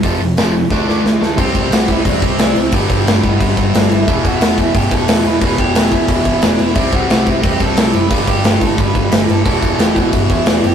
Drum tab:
CC |--------|xxxxxxxx|xxxxxxxx|xxxxxxxx|
HH |o-o-----|--------|--------|--------|
SD |--o-oooo|--o---o-|--o---o-|--o---o-|
BD |o---o---|oo-ooo--|oo-ooo--|oo-ooo--|

CC |xxxxxxxx|xxxxxxxx|xxxxxxxx|xxxxxxxx|
HH |--------|--------|--------|--------|
SD |--o---o-|--o---o-|--o---o-|--o---o-|
BD |oo-ooo--|oo-ooo--|oo-ooo--|oo-ooo--|